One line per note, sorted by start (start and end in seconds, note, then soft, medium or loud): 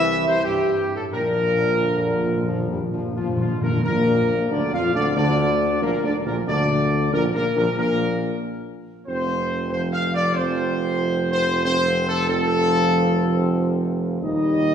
0.00 0.79 C2 medium
0.00 0.24 E3 loud
0.00 0.95 E3 medium
0.00 0.95 E4 medium
0.00 0.24 E5 loud
0.27 0.35 C3 medium
0.27 0.44 C5 loud
0.44 0.92 G2 medium
0.44 0.91 G4 loud
0.95 1.12 A2 medium
0.95 1.03 A4 medium
1.12 3.47 A#1 medium
1.12 1.18 A#2 soft
1.12 3.47 A#2 medium
1.12 1.73 F3 medium
1.12 1.69 D4 medium
1.12 3.11 A#4 loud
1.19 1.26 A#2 soft
1.27 1.34 A#2 soft
1.35 1.42 A#2 soft
1.43 1.50 A#2 soft
1.51 1.57 A#2 soft
1.58 1.65 A#2 soft
1.67 1.73 A#2 soft
1.75 1.81 A#2 soft
1.80 2.44 D3 medium
1.91 1.96 A#2 medium
1.97 2.04 A#2 medium
2.06 2.12 A#2 medium
2.14 2.20 A#2 medium
2.22 2.28 A#2 medium
2.29 2.35 A#2 medium
2.36 2.43 A#2 medium
2.44 2.50 A#2 medium
2.44 2.69 F3 medium
2.51 2.58 A#2 medium
2.59 2.66 A#2 medium
2.67 2.74 A#2 medium
2.67 2.81 G3 medium
2.75 2.82 A#2 medium
2.83 2.89 A#2 medium
2.90 2.97 A#2 medium
2.90 3.14 F3 medium
2.98 3.04 A#2 medium
3.06 3.12 A#2 medium
3.13 3.20 A#2 medium
3.13 3.65 F3 medium
3.13 3.26 F4 medium
3.21 3.28 A#2 medium
3.29 3.36 A#2 loud
3.37 3.44 A#2 loud
3.37 3.61 F4 medium
3.45 3.52 A#2 medium
3.53 3.60 A#2 loud
3.62 3.68 A#2 loud
3.62 3.83 A#4 medium
3.69 3.76 A#2 loud
3.69 3.85 D3 medium
3.77 3.84 A#2 loud
3.84 4.47 A#1 medium
3.84 4.47 A#2 medium
3.84 4.47 A#3 medium
3.84 4.47 A#4 loud
4.51 4.61 D2 medium
4.51 4.72 D3 medium
4.51 4.72 D4 medium
4.51 4.73 D5 loud
4.73 4.93 F2 medium
4.73 4.83 F3 medium
4.73 4.94 F4 medium
4.73 4.93 F5 loud
4.95 5.15 D2 medium
4.95 5.16 D3 medium
4.95 5.05 D4 medium
4.95 5.14 D5 loud
5.15 5.78 D2 medium
5.15 5.79 D3 loud
5.15 5.78 D4 medium
5.15 5.78 D5 loud
5.82 5.92 A#1 medium
5.82 6.03 A#2 medium
5.82 6.03 A#3 loud
5.82 6.04 A#4 medium
6.03 6.13 D2 medium
6.03 6.15 D3 medium
6.03 6.14 D4 loud
6.03 6.14 D5 medium
6.26 6.47 A#1 medium
6.26 6.47 A#2 medium
6.26 6.36 A#3 medium
6.26 6.36 A#4 medium
6.47 7.09 D2 medium
6.47 7.13 D3 medium
6.47 7.09 D4 medium
6.47 7.09 D5 loud
7.12 7.33 A#1 medium
7.12 7.23 A#2 medium
7.12 7.23 A#3 medium
7.12 7.22 A#4 loud
7.34 7.45 A#1 medium
7.34 7.46 A#2 medium
7.34 7.55 A#3 medium
7.34 7.55 A#4 loud
7.56 7.66 A#1 medium
7.56 7.67 A#2 medium
7.56 7.66 A#3 medium
7.56 7.77 A#4 medium
7.78 8.39 A#1 medium
7.78 8.38 A#2 medium
7.78 8.39 A#3 medium
7.78 8.39 A#4 loud
9.06 14.19 F1 medium
9.06 9.67 F2 medium
9.06 9.67 F3 medium
9.06 9.67 C4 medium
9.06 9.67 C5 loud
9.70 10.31 F2 medium
9.70 10.32 F3 medium
9.70 10.31 C4 medium
9.70 9.80 C5 loud
9.92 10.12 F5 loud
10.15 10.34 D5 loud
10.34 11.61 F2 medium
10.34 11.62 F3 medium
10.34 11.61 C4 medium
10.34 11.30 C5 loud
11.31 11.62 C5 loud
11.64 12.25 F2 medium
11.64 12.25 F3 medium
11.64 12.25 C4 medium
11.64 12.04 C5 loud
12.08 12.26 A4 loud
12.28 14.19 F2 medium
12.28 14.19 F3 medium
12.28 14.18 C4 loud
12.28 13.86 A4 loud
14.22 14.74 D#2 loud
14.22 14.74 A#2 loud
14.22 14.74 G3 loud
14.22 14.74 D#4 loud
14.22 14.74 D#5 loud